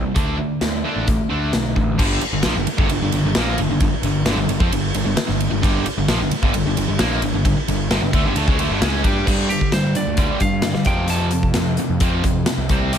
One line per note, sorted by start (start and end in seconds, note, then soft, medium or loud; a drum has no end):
0.00 0.14 C3 medium
0.00 0.14 G3 medium
0.15 0.37 D2 medium
0.15 0.36 D3 medium
0.15 0.37 A3 medium
0.15 0.38 D4 medium
0.15 kick loud
0.15 closed hi-hat medium
0.38 0.59 D3 medium
0.38 0.59 A3 medium
0.61 0.83 D2 medium
0.61 0.82 D3 medium
0.61 0.83 A3 medium
0.61 snare medium
0.61 closed hi-hat medium
0.84 1.06 D3 medium
0.84 1.06 A3 medium
0.84 1.07 D4 loud
0.96 1.17 A1 medium
1.07 1.28 D3 medium
1.07 1.28 A3 medium
1.07 kick loud
1.07 closed hi-hat medium
1.30 1.52 D2 medium
1.30 1.52 D3 medium
1.30 1.52 A3 loud
1.30 1.52 D4 loud
1.53 1.74 B1 medium
1.53 1.74 D3 medium
1.53 1.74 A3 medium
1.53 snare loud
1.53 closed hi-hat medium
1.76 1.97 A1 medium
1.76 1.97 D3 medium
1.76 1.97 A3 medium
1.76 kick medium
1.98 2.20 G1 medium
1.98 2.21 G2 medium
1.98 2.21 D3 medium
1.98 2.21 G3 loud
1.98 kick loud
1.98 crash loud
2.21 muted distorted electric guitar stroke medium
2.21 muted picked electric bass stroke soft
2.21 ride medium
2.32 2.43 G1 medium
2.32 2.45 G2 medium
2.32 2.44 D3 medium
2.43 2.55 A#1 medium
2.43 2.55 A#2 medium
2.43 2.56 F3 medium
2.43 snare loud
2.43 ride medium
2.56 2.67 G1 medium
2.56 2.66 G2 medium
2.56 2.68 D3 medium
2.67 muted distorted electric guitar stroke medium
2.67 muted picked electric bass stroke soft
2.67 ride medium
2.78 2.89 G1 loud
2.78 2.89 G2 medium
2.78 2.89 D3 loud
2.78 kick loud
2.89 3.01 G1 medium
2.89 3.01 G2 medium
2.89 3.01 D3 medium
2.89 ride loud
3.02 3.12 G1 medium
3.02 3.12 G2 medium
3.02 3.13 D3 medium
3.12 3.23 G1 medium
3.12 3.24 G2 medium
3.12 3.24 D3 medium
3.12 ride medium
3.24 3.35 G1 medium
3.24 3.36 G2 medium
3.24 3.36 D3 medium
3.35 3.57 A#1 medium
3.35 3.58 A#2 medium
3.35 3.58 F3 medium
3.35 3.59 A#3 medium
3.35 snare loud
3.35 ride medium
3.58 3.68 G1 medium
3.58 3.70 G2 medium
3.58 3.70 D3 medium
3.58 ride medium
3.69 3.80 G1 medium
3.69 3.81 G2 medium
3.69 3.81 D3 medium
3.80 3.90 G1 medium
3.80 3.92 G2 medium
3.80 3.93 D3 medium
3.80 kick medium
3.80 ride medium
3.90 muted picked electric bass stroke soft
3.90 muted distorted electric guitar stroke medium
4.02 4.23 G1 medium
4.02 4.22 G2 medium
4.02 4.23 D3 medium
4.02 ride medium
4.24 4.35 G1 medium
4.24 4.38 G2 medium
4.24 snare loud
4.24 ride medium
4.28 4.38 D3 medium
4.36 4.47 G1 medium
4.36 4.48 G2 medium
4.36 4.49 D3 medium
4.47 4.59 G1 medium
4.47 4.61 G2 medium
4.47 4.59 D3 medium
4.47 ride medium
4.60 4.70 F2 loud
4.60 4.71 F3 medium
4.60 4.72 C4 loud
4.60 kick loud
4.70 4.92 G1 medium
4.70 4.90 G2 medium
4.70 4.90 D3 medium
4.70 ride loud
4.94 5.05 G1 medium
4.94 5.04 G2 medium
4.94 5.04 D3 medium
4.94 ride medium
5.05 5.16 G1 medium
5.05 5.15 G2 medium
5.05 5.17 D3 medium
5.16 muted distorted electric guitar stroke medium
5.16 muted picked electric bass stroke soft
5.16 snare loud
5.16 ride loud
5.27 5.50 G1 medium
5.27 5.47 G2 medium
5.27 5.47 D3 medium
5.27 snare soft
5.40 ride medium
5.50 5.62 G1 medium
5.50 5.61 G2 medium
5.50 5.62 D3 medium
5.62 5.84 G1 medium
5.62 5.85 G2 loud
5.62 5.85 D3 loud
5.62 5.86 G3 loud
5.62 kick loud
5.62 ride loud
5.86 muted distorted electric guitar stroke medium
5.86 muted picked electric bass stroke soft
5.86 ride medium
5.97 6.08 G1 medium
5.97 6.09 G2 medium
5.97 6.08 D3 medium
6.08 6.19 A#1 medium
6.08 6.20 A#2 medium
6.08 6.20 F3 loud
6.08 snare loud
6.08 ride medium
6.20 6.31 G1 medium
6.20 6.31 G2 medium
6.20 6.32 D3 medium
6.31 muted picked electric bass stroke soft
6.31 muted distorted electric guitar stroke medium
6.31 ride medium
6.42 6.53 G1 loud
6.42 6.54 G2 loud
6.42 6.54 D3 loud
6.42 kick loud
6.54 6.65 G1 medium
6.54 6.65 G2 medium
6.54 6.66 D3 medium
6.54 ride loud
6.65 6.76 G1 medium
6.65 6.76 G2 medium
6.65 6.76 D3 medium
6.77 6.88 G1 medium
6.77 6.87 G2 medium
6.77 6.88 D3 medium
6.77 ride medium
6.88 6.99 G1 medium
6.88 7.00 G2 medium
6.88 6.98 D3 medium
6.99 7.21 A#1 medium
6.99 7.21 A#2 medium
6.99 7.22 F3 medium
6.99 7.22 A#3 loud
6.99 snare loud
6.99 ride medium
7.22 7.33 G1 medium
7.22 7.33 G2 medium
7.22 7.33 D3 medium
7.22 ride medium
7.33 7.44 G1 medium
7.33 7.44 G2 medium
7.33 7.44 D3 medium
7.45 7.56 G1 medium
7.45 7.56 G2 medium
7.45 7.57 D3 medium
7.45 kick medium
7.45 ride medium
7.56 muted picked electric bass stroke soft
7.56 muted distorted electric guitar stroke medium
7.68 7.89 G1 medium
7.68 7.86 G2 medium
7.68 7.87 D3 medium
7.68 ride medium
7.90 8.01 G1 medium
7.90 8.01 G2 medium
7.90 8.02 D3 medium
7.90 snare loud
7.90 ride medium
8.01 8.12 G1 medium
8.01 8.14 G2 medium
8.01 8.12 D3 medium
8.13 8.23 D2 medium
8.13 8.24 D3 medium
8.13 8.25 A3 loud
8.13 kick loud
8.13 ride medium
8.24 8.35 G1 loud
8.24 8.36 G2 medium
8.24 8.35 D3 loud
8.35 8.47 D2 medium
8.35 8.47 D3 medium
8.35 8.48 A3 medium
8.35 ride loud
8.47 8.57 C#2 medium
8.47 8.58 C#3 medium
8.47 8.59 G#3 loud
8.47 kick loud
8.58 8.69 D2 medium
8.58 8.70 D3 medium
8.58 8.70 A3 loud
8.58 ride medium
8.69 8.80 G1 medium
8.69 8.82 G2 medium
8.69 8.81 D3 loud
8.81 9.03 C#2 medium
8.81 9.04 C#3 medium
8.81 9.03 G#3 medium
8.81 9.04 C#4 medium
8.81 snare loud
8.81 ride loud
9.04 9.26 G2 medium
9.04 9.26 G3 medium
9.04 9.27 D4 loud
9.04 9.27 G4 medium
9.04 kick loud
9.04 ride medium
9.26 9.48 G2 medium
9.26 9.48 G2 loud
9.26 9.49 D3 medium
9.26 9.49 G3 loud
9.26 kick loud
9.26 crash loud
9.50 9.71 G2 medium
9.50 9.71 D3 medium
9.50 9.73 G4 medium
9.50 closed hi-hat medium
9.61 kick medium
9.72 9.93 G2 medium
9.72 9.93 D3 medium
9.72 9.94 G3 medium
9.72 9.96 C5 medium
9.72 snare medium
9.72 closed hi-hat medium
9.95 10.16 G2 medium
9.95 10.16 D3 medium
9.95 10.41 D5 medium
9.95 closed hi-hat medium
10.07 10.28 D2 medium
10.17 10.39 G2 medium
10.17 10.39 D3 medium
10.17 10.41 G3 medium
10.17 kick loud
10.17 closed hi-hat medium
10.40 10.61 G2 medium
10.40 10.73 G2 medium
10.40 10.62 D3 medium
10.40 10.86 F5 medium
10.40 kick medium
10.40 closed hi-hat medium
10.62 10.84 G2 medium
10.62 10.85 D3 medium
10.62 snare loud
10.62 closed hi-hat medium
10.75 10.85 G3 medium
10.75 snare soft
10.85 11.51 F2 medium
10.85 11.08 F2 medium
10.85 11.08 C3 medium
10.85 11.09 F3 loud
10.85 11.09 G5 medium
10.85 kick loud
10.85 closed hi-hat medium
11.08 11.31 F2 medium
11.08 11.31 C3 medium
11.08 11.32 F3 medium
11.08 11.99 A5 medium
11.08 closed hi-hat medium
11.31 11.54 F2 medium
11.31 11.54 C3 medium
11.31 closed hi-hat medium
11.43 kick medium
11.54 11.77 F2 loud
11.54 11.77 F2 medium
11.54 11.77 C3 medium
11.54 snare loud
11.54 closed hi-hat medium
11.77 11.99 F2 medium
11.77 12.00 C3 medium
11.77 closed hi-hat medium
11.89 12.21 F2 medium
12.00 12.23 F2 medium
12.00 12.23 C3 medium
12.00 12.23 F3 medium
12.00 kick loud
12.00 closed hi-hat medium
12.24 12.45 F2 medium
12.24 12.45 C3 medium
12.24 kick medium
12.24 closed hi-hat medium
12.46 12.68 F2 medium
12.46 12.68 C3 medium
12.46 snare loud
12.46 closed hi-hat loud
12.58 12.69 C2 medium
12.69 12.98 C2 medium
12.69 12.91 C3 medium
12.69 12.92 G3 medium
12.69 12.92 C4 loud
12.69 kick loud
12.69 closed hi-hat medium
12.92 12.98 C3 medium
12.92 12.98 G3 medium
12.92 12.98 C4 loud
12.92 closed hi-hat medium